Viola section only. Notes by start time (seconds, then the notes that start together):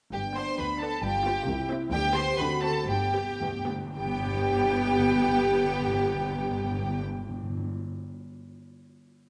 0.36 B3 D4
0.81 B3 D4
1.25 B3 F4
1.70 C4 E4
2.15 B3 G4
2.63 C4 F#4
3.14 B3 G4
3.68 B3 G4
3.97 B3 G4